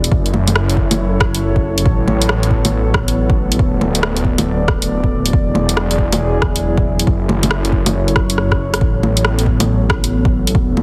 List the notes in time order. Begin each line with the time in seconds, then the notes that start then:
Already playing: F#3
0.04 closed hi-hat
0.12 F#1 E4 A4 C#5, kick
0.26 closed hi-hat
0.34 low bongo
0.48 closed hi-hat, low bongo
0.56 cross-stick
0.70 closed hi-hat
0.77 kick
0.91 closed hi-hat, low bongo
1.20 kick, cross-stick
1.35 closed hi-hat
1.56 kick
1.78 closed hi-hat
1.86 A1 B3, kick
2.08 low bongo
2.22 closed hi-hat
2.29 cross-stick
2.43 closed hi-hat
2.51 kick
2.65 closed hi-hat, low bongo
2.94 kick, cross-stick
3.08 closed hi-hat
3.30 kick
3.52 closed hi-hat
3.59 D1 D5, kick
3.81 low bongo
3.95 closed hi-hat
4.03 cross-stick
4.17 closed hi-hat
4.25 kick
4.38 closed hi-hat, low bongo
4.68 kick, cross-stick
4.82 closed hi-hat
5.04 kick
5.26 closed hi-hat
5.33 E1 F#3 E4 G#4, kick
5.55 low bongo
5.69 closed hi-hat
5.77 cross-stick
5.91 closed hi-hat
5.99 kick
6.12 closed hi-hat, low bongo
6.42 kick, cross-stick
6.56 closed hi-hat
6.78 kick
6.99 closed hi-hat
7.07 F#1 A4 C#5, kick
7.29 low bongo
7.43 closed hi-hat, low bongo
7.51 cross-stick
7.65 closed hi-hat
7.72 kick
7.86 closed hi-hat, low bongo
8.08 closed hi-hat
8.16 kick, cross-stick
8.30 closed hi-hat
8.38 cross-stick
8.52 kick, cross-stick
8.74 cross-stick, closed hi-hat
8.81 A1 B3, kick
9.03 low bongo
9.17 closed hi-hat
9.25 cross-stick
9.39 closed hi-hat
9.46 kick
9.60 closed hi-hat, low bongo
9.90 kick, cross-stick
10.04 closed hi-hat
10.25 kick
10.47 closed hi-hat
10.55 D1 D5, kick
10.77 low bongo